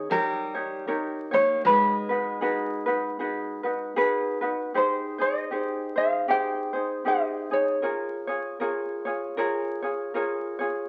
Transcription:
Already playing: ukulele G#4 C#5
0.10 steel-string acoustic guitar G3, ukulele D#4 G4 A#4 C#5
0.55 ukulele D#4 G4 C#5
0.87 ukulele D#4 G4 A#4 C#5
1.31 steel-string acoustic guitar A#3, ukulele D#4 G4 C#5
1.65 steel-string acoustic guitar G#3, ukulele D#4 F#4 G#4 B4
2.09 ukulele D#4 F#4 B4
2.41 ukulele D#4 F#4 G#4 B4
2.86 ukulele D#4 F#4 B4
3.19 ukulele D#4 F#4 G#4 B4
3.63 ukulele D#4 F#4 B4
3.96 ukulele D#4 F#4 G#4 B4
4.41 ukulele D#4 F#4 B4
4.74 ukulele D#4 G4 G#4 C5
5.18 ukulele D#4 G#4 C5 D#5
5.51 ukulele D#4 G4 G#4 C5
5.96 ukulele D#4 G#4 C5 F5
6.28 ukulele D#4 G4 G#4 C5 G5
6.73 ukulele D#4 G#4 C5
7.05 ukulele D#4 G4 G#4 C5 D#5
7.51 ukulele D#4 G#4 C#5
7.82 ukulele F4 G#4 A#4 C#5
8.27 ukulele F4 G#4 C#5
8.60 ukulele F4 G#4 A#4 C#5
9.05 ukulele F4 G#4 C#5
9.37 ukulele F4 G#4 A#4 C#5
9.82 ukulele F4 G#4 C#5
10.14 ukulele F4 G#4 A#4 C#5
10.59 ukulele F4 G#4 C#5

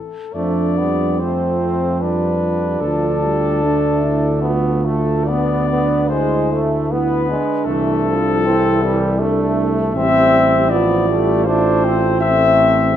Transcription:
Already playing: flugelhorn A4
0.34 tuba F2, trombone section F3, trombone A3, french horn section D4, flugelhorn D5
0.78 trombone section G3, trombone B3
1.20 trombone section A3, trombone C4, french horn section F4, flugelhorn C5
2.00 trombone section G3, trombone D4, flugelhorn B4
2.81 tuba D2, trombone section F3, french horn section F4, flugelhorn A4
3.23 trombone section G3
3.62 trombone section A3, french horn section D4
4.02 french horn section E4
4.42 trombone B3, french horn section F4
4.83 trombone A3, flugelhorn A4
5.25 trombone B3, french horn section D4, flugelhorn D5
5.29 trombone section B3
5.70 trombone B3, trombone section B3
6.09 trombone section G#3, trombone G#3, french horn section E4, flugelhorn C5
6.52 trombone section A3, trombone A3
6.89 trombone section B3, trombone B3, french horn section E4, flugelhorn B4
7.29 trombone G#3, french horn section D4
7.65 tuba C2, trombone section E3, trombone A3, flugelhorn A4
8.07 trombone section F3
8.43 trombone section E3, trombone C4, french horn section E4
8.82 trombone G3, french horn section E4
9.20 trombone A3, trombone section A3, french horn section D4
9.94 tuba A1, trombone section G3, french horn section C4, trombone C4, flugelhorn E5
10.70 trombone section F3, trombone B3, french horn section F4, flugelhorn D5
11.08 trombone section G3, trombone A3
11.44 trombone section A3, trombone D4, french horn section F4, flugelhorn C5
11.84 trombone C4
12.21 trombone section A3, french horn section C4, flugelhorn E5

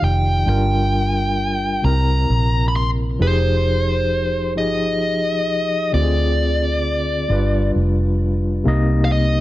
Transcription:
Already playing: tine electric piano D#3 D#4 F4 G4 D5
0.02 fingered electric bass F1, lead electric guitar G5
0.46 fingered electric bass G1, tine electric piano G3 D4 F4 A#4, lead electric guitar G5
1.82 fingered electric bass C2, tine electric piano C3 C4 E4 A#4, lead electric guitar A#5
2.30 fingered electric bass A#1
2.68 lead electric guitar B5
2.76 lead electric guitar C6
3.19 fingered electric bass F1, tine electric piano F3 D#4 G4 G#4, lead electric guitar C5
4.55 fingered electric bass G1, tine electric piano F3 D#4 G4 G#4, lead electric guitar D#5
5.48 fingered electric bass C2
5.92 fingered electric bass D2, tine electric piano D3 C4 F4 G4, lead electric guitar D5
6.02 tine electric piano G#4
7.29 fingered electric bass G1, tine electric piano G3 D4 F4 B4
7.76 fingered electric bass F1
8.64 fingered electric bass C2, tine electric piano C3 A#3 D#4 D#5
9.05 lead electric guitar F5
9.12 lead electric guitar D#5

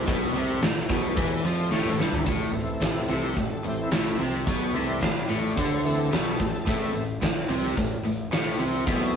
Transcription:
Already playing: tonewheel organ E4 A4 C5
0.07 fingered electric bass B1, overdriven electric guitar B2, kick, closed hi-hat
0.34 fingered electric bass C2, overdriven electric guitar C3, closed hi-hat
0.61 fingered electric bass A1, overdriven electric guitar A2, snare, closed hi-hat, tambourine
0.77 snare
0.89 fingered electric bass B1, overdriven electric guitar B2, kick, closed hi-hat
1.16 fingered electric bass E2, overdriven electric guitar E3, kick, closed hi-hat
1.43 fingered electric bass F2, overdriven electric guitar F3, closed hi-hat
1.70 fingered electric bass A1, overdriven electric guitar A2, snare
1.85 mid tom
1.98 fingered electric bass G1, overdriven electric guitar G2, snare
2.12 floor tom
2.26 fingered electric bass A1, overdriven electric guitar A2, kick, closed hi-hat
2.53 fingered electric bass A1, overdriven electric guitar A2, tonewheel organ E3 A3 C4, closed hi-hat
2.81 fingered electric bass A1, overdriven electric guitar A2, kick, snare, closed hi-hat, tambourine
3.08 fingered electric bass C2, overdriven electric guitar C3, closed hi-hat
3.13 tonewheel organ A4
3.28 tonewheel organ G4
3.36 fingered electric bass A1, overdriven electric guitar A2, kick, closed hi-hat
3.42 tonewheel organ E4
3.52 tonewheel organ A4
3.64 fingered electric bass A1, overdriven electric guitar A2, tonewheel organ E3 A3 C4 G4, closed hi-hat
3.82 tonewheel organ E4
3.91 fingered electric bass A1, overdriven electric guitar A2, tonewheel organ D#4 E4, snare, closed hi-hat, tambourine
4.19 fingered electric bass C2, overdriven electric guitar C3, closed hi-hat
4.47 fingered electric bass B1, overdriven electric guitar B2, kick, closed hi-hat
4.73 fingered electric bass C2, overdriven electric guitar C3, tonewheel organ E3 A3 C4 D5, closed hi-hat
4.89 tonewheel organ D5
5.02 fingered electric bass A1, overdriven electric guitar A2, kick, snare, closed hi-hat, tambourine
5.29 fingered electric bass A1, overdriven electric guitar A2, closed hi-hat
5.57 fingered electric bass D2, overdriven electric guitar D3, kick, closed hi-hat
5.72 tonewheel organ C5
5.85 tonewheel organ E3 A3 C4 A4, closed hi-hat
6.12 fingered electric bass B1, overdriven electric guitar B2, snare, closed hi-hat, tambourine
6.40 fingered electric bass A1, overdriven electric guitar A2, kick, closed hi-hat
6.67 fingered electric bass A1, overdriven electric guitar A2, tonewheel organ E3 A3 C4, kick, closed hi-hat
6.94 fingered electric bass A1, overdriven electric guitar A2, closed hi-hat
7.22 fingered electric bass A1, overdriven electric guitar A2, kick, snare, closed hi-hat, tambourine
7.49 fingered electric bass C2, overdriven electric guitar C3, closed hi-hat
7.65 snare
7.77 fingered electric bass A1, overdriven electric guitar A2, kick, closed hi-hat
8.03 fingered electric bass A1, overdriven electric guitar A2, closed hi-hat
8.32 fingered electric bass A1, overdriven electric guitar A2, snare, closed hi-hat, tambourine
8.59 fingered electric bass C2, overdriven electric guitar C3, closed hi-hat
8.87 fingered electric bass B1, overdriven electric guitar B2, tonewheel organ E3 A3 C4, kick, closed hi-hat

